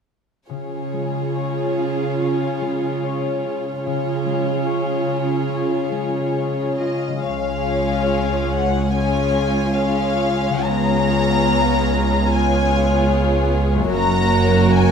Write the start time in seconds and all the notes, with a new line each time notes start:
0.48 C#3 F4 G#4 C#5
0.93 G#3
1.35 C#5
1.78 F4
2.20 C#4
2.61 G#3
3.03 C#5
3.44 F4
3.82 C#3 F4 G#4 C#5
3.86 C#3
4.26 G#3
4.66 C#5
5.06 F4
5.49 C#4
5.92 G#3
6.37 C#5
6.78 F4 D#5
7.08 C#3
7.13 G#3
7.17 F4
7.21 C#2 G#4 C#5 F5
7.25 C#2 C#4 F4
8.52 F#5
8.92 C#4 F4 G#4 C#5 G#5
9.76 C#4 F4 G#4 C#5 F5
10.49 C#3
10.54 G#3
10.58 F4
10.63 C#2 G#4 B4 C#5 A#5
10.68 B3 F4
12.30 B3 F4 G#4 C#5 G#5
13.75 F#2
13.80 A#3
13.84 F#4
13.88 F#1 F#2 A#3 F#4 A#4
13.93 C#5 A#5
14.74 G#5